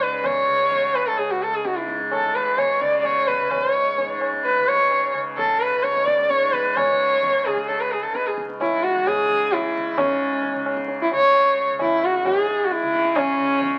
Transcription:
0.00 1.06 C#2 medium
0.00 1.66 G#2 medium
0.00 0.47 C#3 medium
0.00 0.27 B4 medium
0.00 tabla te medium
0.24 0.96 C#5 loud
0.24 tabla na loud
0.24 tabla ge medium
0.47 2.24 C#3 medium
0.71 tabla tin medium
0.71 tabla ge medium
0.95 1.08 B4 medium
0.95 tabla na medium
1.07 3.39 C#2 medium
1.07 1.20 A4 medium
1.18 1.33 G#4 medium
1.18 tabla tin medium
1.31 1.44 F#4 medium
1.42 1.56 A4 medium
1.55 1.68 G#4 medium
1.65 3.99 G#2 medium
1.65 1.79 F#4 medium
1.65 tabla te medium
1.77 1.89 E4 medium
1.77 tabla te medium
1.88 tabla ke medium
2.00 tabla te medium
2.11 2.37 A4 medium
2.11 tabla na medium
2.11 tabla ge medium
2.24 2.81 C#3 medium
2.35 2.60 B4 medium
2.35 tabla ge soft
2.58 2.83 C#5 medium
2.58 tabla na medium
2.58 tabla ge medium
2.81 4.57 C#3 medium
2.81 2.99 D5 loud
2.81 tabla te medium
3.01 3.06 D5 medium
3.05 3.29 C#5 medium
3.05 tabla na medium
3.05 tabla ge medium
3.28 3.51 B4 medium
3.28 tabla ge medium
3.40 5.71 C#2 medium
3.51 3.72 B4 medium
3.51 tabla na loud
3.51 tabla ge medium
3.72 4.21 C#5 medium
3.98 6.30 G#2 medium
3.98 tabla tin medium
3.98 tabla ge medium
4.21 tabla na medium
4.33 tabla ke medium
4.45 4.70 B4 medium
4.45 tabla tin medium
4.57 5.14 C#3 medium
4.68 5.15 C#5 loud
4.91 tabla na medium
5.14 6.88 C#3 medium
5.14 tabla na medium
5.37 5.62 A4 medium
5.37 tabla na medium
5.37 tabla ge medium
5.60 5.85 B4 medium
5.72 8.03 C#2 medium
5.83 6.08 C#5 medium
5.83 tabla te medium
5.96 tabla te medium
6.07 6.31 D5 loud
6.07 tabla ke medium
6.19 tabla te medium
6.30 8.61 G#2 medium
6.30 6.54 C#5 medium
6.30 tabla te medium
6.42 tabla te medium
6.52 6.78 B4 medium
6.52 tabla ke medium
6.65 tabla te medium
6.76 7.47 C#5 medium
6.76 tabla na loud
6.76 tabla ge medium
6.88 7.46 C#3 medium
7.23 tabla tin medium
7.23 tabla ge medium
7.45 9.19 C#3 medium
7.45 7.69 G#4 medium
7.45 tabla na medium
7.57 tabla ke medium
7.68 7.82 A4 medium
7.68 tabla tin medium
7.80 7.93 B4 medium
7.92 8.04 G#4 medium
8.03 11.69 C#2 medium
8.03 8.16 A4 medium
8.15 8.28 B4 medium
8.15 tabla te medium
8.26 8.38 G#4 medium
8.26 tabla te medium
8.38 tabla ke medium
8.49 tabla te medium
8.61 9.98 G#2 medium
8.61 8.85 E4 medium
8.61 tabla na medium
8.61 tabla ge medium
8.83 9.09 F#4 medium
8.83 tabla te medium
8.95 tabla ge soft
9.07 9.54 G#4 loud
9.07 tabla na medium
9.07 tabla ge medium
9.19 9.75 C#3 medium
9.30 tabla ge medium
9.52 10.00 E4 medium
9.52 tabla na medium
9.52 tabla ge medium
9.75 10.55 C#3 medium
9.75 tabla ge medium
9.98 12.26 G#2 medium
9.98 10.67 C#4 medium
9.98 tabla na loud
9.98 tabla ge loud
10.43 tabla tin medium
10.43 tabla ge medium
10.55 11.12 C#3 medium
10.66 tabla na medium
10.77 tabla ke medium
10.88 tabla tin medium
11.02 11.12 E4 medium
11.11 12.82 C#3 medium
11.11 11.66 C#5 loud
11.11 tabla na medium
11.34 tabla na medium
11.69 13.79 C#2 medium
11.79 12.06 E4 loud
11.79 tabla na medium
11.79 tabla ge medium
12.03 12.28 F#4 medium
12.03 tabla te medium
12.14 tabla ge soft
12.25 13.79 G#2 medium
12.25 12.66 G#4 medium
12.25 tabla na medium
12.25 tabla ge medium
12.48 tabla te medium
12.65 12.73 F#4 medium
12.71 13.18 E4 medium
12.71 tabla te medium
12.82 13.39 C#3 medium
12.82 tabla te medium
12.94 tabla ke medium
13.05 tabla te medium
13.16 13.79 C#4 loud
13.16 tabla na loud
13.16 tabla ge loud
13.39 13.79 C#3 medium
13.61 tabla tin medium
13.61 tabla ge medium

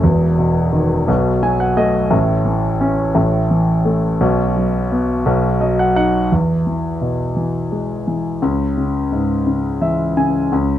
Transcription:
0.03 1.04 E1 medium
0.03 1.05 E2 medium
0.38 1.06 B2 soft
0.73 1.07 D#3 medium
1.08 2.09 B1 medium
1.08 2.09 B2 medium
1.43 2.11 F#3 medium
1.43 1.59 G#5 medium
1.60 1.76 F#5 medium
1.77 2.11 A3 medium
1.77 2.10 D#5 medium
2.10 3.12 A1 medium
2.10 3.13 A2 medium
2.45 3.14 E3 medium
2.81 3.15 C#4 medium
3.15 4.17 A1 medium
3.15 4.17 A2 medium
3.51 4.19 E3 medium
3.85 4.20 A3 medium
4.21 5.22 B1 medium
4.21 5.23 B2 medium
4.57 5.24 F#3 medium
4.92 5.25 B3 medium
5.26 6.27 B1 medium
5.26 6.28 B2 medium
5.60 6.29 F#3 medium
5.60 5.77 D#5 medium
5.79 5.95 F#5 medium
5.96 6.30 D#4 medium
5.96 6.29 F#5 medium
6.32 8.37 E2 medium
6.67 7.35 E3 soft
7.01 8.37 B2 soft
7.37 8.06 E3 soft
7.72 8.39 G#3 soft
8.08 8.41 E3 soft
8.42 10.47 C#2 medium
8.77 9.45 C#3 soft
9.12 10.47 G#2 soft
9.47 10.15 C#3 soft
9.82 10.49 E3 soft
9.82 10.14 E5 medium
10.17 10.50 C#3 soft
10.17 10.49 G#5 medium
10.52 10.79 C#2 medium

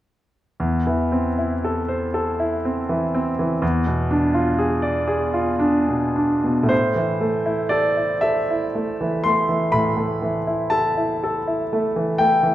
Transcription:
0.60 3.58 E2 soft
0.87 1.28 E3 soft
1.12 1.54 C4 soft
1.38 1.79 E4 soft
1.64 2.05 A4 soft
1.88 2.30 C5 soft
2.14 2.55 A4 soft
2.40 2.80 E4 soft
2.65 3.05 C4 soft
2.89 3.29 E3 soft
3.14 3.53 C4 soft
3.39 3.62 E3 soft
3.62 6.67 E2 medium
3.87 4.24 B2 soft
4.11 4.48 D4 soft
4.34 4.73 F4 soft
4.59 4.98 G#4 soft
4.82 5.23 D5 soft
5.08 5.49 G#4 soft
5.34 5.76 F4 soft
5.59 6.05 D4 soft
5.88 6.34 B2 soft
6.16 6.60 D4 soft
6.44 6.70 B2 soft
6.63 9.66 A2 soft
6.69 7.71 C5 medium
6.95 7.36 E3 soft
7.21 7.62 A3 soft
7.46 7.87 E4 soft
7.69 8.13 A4 soft
7.69 8.23 D5 medium
7.97 8.39 E4 soft
8.21 8.65 A4 soft
8.21 9.25 E5 medium
8.50 8.92 E4 soft
8.75 9.16 A3 soft
9.01 9.40 E3 soft
9.24 9.64 A3 soft
9.24 9.73 C6 medium
9.49 9.88 E3 soft
9.72 12.55 A2 soft
9.72 10.71 B5 medium
9.97 10.36 A3 soft
10.22 10.62 E3 soft
10.47 10.88 E4 soft
10.70 11.12 A4 soft
10.70 12.18 A5 medium
10.97 11.38 E4 soft
11.24 11.63 A4 soft
11.47 11.86 E4 soft
11.73 12.10 A3 soft
11.96 12.33 E3 soft
12.18 12.55 A3 soft
12.18 12.55 G5 medium
12.43 12.55 E3 soft

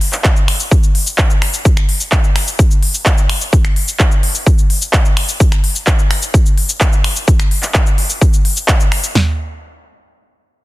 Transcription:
0.01 open hi-hat loud
0.13 clap soft
0.13 shaker medium
0.24 kick loud
0.24 clap loud
0.24 shaker soft
0.36 shaker soft
0.48 finger snap medium
0.48 open hi-hat loud
0.60 shaker medium
0.71 kick loud
0.71 shaker medium
0.83 shaker soft
0.95 open hi-hat loud
1.07 shaker medium
1.18 kick loud
1.18 clap loud
1.18 shaker medium
1.30 shaker soft
1.42 finger snap medium
1.42 open hi-hat loud
1.54 shaker medium
1.65 kick loud
1.65 shaker medium
1.77 finger snap medium
1.77 shaker soft
1.89 open hi-hat loud
2.01 shaker medium
2.12 kick loud
2.12 clap loud
2.12 shaker medium
2.24 shaker soft
2.36 finger snap medium
2.36 open hi-hat loud
2.47 shaker medium
2.59 kick loud
2.59 shaker medium
2.71 shaker soft
2.83 open hi-hat loud
2.94 shaker medium
3.06 kick loud
3.06 clap loud
3.06 shaker soft
3.18 shaker soft
3.29 finger snap medium
3.29 open hi-hat loud
3.41 shaker medium
3.53 kick loud
3.53 shaker medium
3.65 finger snap medium
3.65 shaker soft
3.76 open hi-hat loud
3.88 shaker medium
4.00 kick loud
4.00 clap loud
4.00 shaker medium
4.12 shaker soft
4.23 open hi-hat loud
4.35 shaker medium
4.47 kick loud
4.47 shaker medium
4.58 shaker soft
4.70 open hi-hat loud
4.82 shaker medium
4.93 kick loud
4.93 clap loud
4.93 shaker medium
5.05 shaker soft
5.17 finger snap medium
5.17 open hi-hat loud
5.29 shaker medium
5.40 kick loud
5.40 shaker medium
5.52 finger snap medium
5.52 shaker soft
5.64 open hi-hat loud
5.76 shaker medium
5.87 kick loud
5.87 clap loud
5.87 shaker medium
5.99 shaker soft
6.11 finger snap medium
6.11 open hi-hat medium
6.22 shaker medium
6.34 kick loud
6.34 shaker medium
6.46 shaker soft
6.58 open hi-hat medium
6.69 shaker medium
6.81 kick loud
6.81 clap loud
6.81 shaker medium
6.93 shaker soft
7.04 finger snap medium
7.04 open hi-hat loud
7.16 shaker medium
7.28 kick loud
7.28 shaker medium
7.40 finger snap medium
7.40 shaker soft
7.51 open hi-hat loud
7.63 clap soft
7.63 shaker medium
7.74 kick loud
7.74 clap loud
7.74 shaker medium
7.86 shaker soft
7.98 open hi-hat medium
8.10 shaker medium
8.21 kick loud
8.21 shaker medium
8.33 shaker soft
8.45 open hi-hat loud
8.57 shaker medium
8.68 kick loud
8.68 clap loud
8.68 shaker medium
8.80 shaker soft
8.92 finger snap medium
8.92 open hi-hat loud
9.04 shaker medium
9.15 snare loud
9.15 floor tom loud

